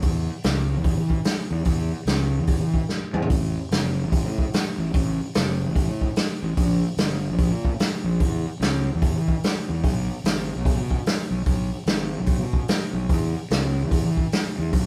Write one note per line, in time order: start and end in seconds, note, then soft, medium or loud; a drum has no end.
0.02 0.27 E2 medium
0.02 kick loud
0.02 open hi-hat medium
0.43 0.75 C#2 medium
0.43 snare loud
0.43 open hi-hat medium
0.77 0.96 E2 medium
0.84 kick loud
0.84 open hi-hat medium
0.97 1.17 E3 medium
1.10 kick medium
1.24 snare loud
1.24 open hi-hat medium
1.51 1.65 E2 medium
1.65 1.91 E2 medium
1.65 kick loud
1.65 open hi-hat medium
2.06 2.38 C#2 medium
2.06 snare loud
2.06 open hi-hat medium
2.39 2.59 E2 medium
2.47 kick loud
2.47 open hi-hat medium
2.61 2.80 E3 medium
2.74 kick medium
2.89 snare medium
3.13 3.29 E2 medium
3.13 mid tom medium
3.22 floor tom medium
3.30 3.55 A1 medium
3.30 kick loud
3.30 open hi-hat medium
3.71 4.03 F#1 medium
3.71 snare loud
3.71 open hi-hat medium
4.05 4.24 A1 medium
4.12 kick loud
4.12 open hi-hat medium
4.25 4.44 A2 medium
4.38 kick medium
4.53 snare loud
4.53 open hi-hat medium
4.78 4.93 A1 medium
4.94 5.19 A1 medium
4.94 kick loud
4.94 open hi-hat medium
5.34 5.67 F#1 medium
5.34 snare loud
5.34 open hi-hat medium
5.68 5.87 A1 medium
5.76 kick loud
5.76 open hi-hat medium
5.88 6.07 A2 medium
6.01 kick medium
6.16 snare loud
6.16 open hi-hat medium
6.42 6.56 A1 medium
6.57 6.81 A#1 medium
6.57 kick loud
6.57 open hi-hat medium
6.97 7.28 G1 medium
6.97 snare loud
6.97 open hi-hat medium
7.30 7.50 A#1 medium
7.38 kick loud
7.38 open hi-hat medium
7.51 7.70 A#2 medium
7.65 kick medium
7.79 snare loud
7.79 open hi-hat medium
8.04 8.19 A#1 medium
8.20 8.44 E2 medium
8.20 kick loud
8.20 open hi-hat medium
8.60 8.91 C#2 medium
8.60 snare loud
8.60 open hi-hat medium
8.95 9.13 E2 medium
9.02 kick loud
9.02 open hi-hat medium
9.15 9.34 E3 medium
9.28 kick medium
9.43 snare loud
9.43 open hi-hat medium
9.69 9.83 E2 medium
9.84 10.08 B1 medium
9.84 kick loud
9.84 open hi-hat medium
10.24 10.55 G#1 medium
10.24 snare loud
10.24 open hi-hat medium
10.56 10.76 B1 medium
10.65 kick loud
10.65 open hi-hat medium
10.76 10.96 B2 medium
10.91 kick medium
11.06 snare loud
11.06 open hi-hat medium
11.31 11.45 B1 medium
11.46 11.70 B1 medium
11.46 kick loud
11.46 open hi-hat medium
11.86 12.17 G#1 medium
11.86 snare loud
11.86 open hi-hat soft
12.18 12.38 B1 medium
12.26 kick loud
12.26 open hi-hat medium
12.39 12.59 B2 medium
12.53 kick medium
12.68 snare loud
12.68 open hi-hat medium
12.93 13.08 B1 medium
13.09 13.33 E2 medium
13.09 kick loud
13.09 open hi-hat medium
13.51 13.81 C#2 medium
13.51 snare loud
13.51 open hi-hat medium
13.83 14.02 E2 medium
13.91 kick loud
13.91 open hi-hat medium
14.04 14.23 E3 medium
14.17 kick medium
14.32 snare loud
14.32 open hi-hat medium
14.58 14.72 E2 medium
14.73 14.86 B1 medium
14.73 kick loud
14.73 open hi-hat medium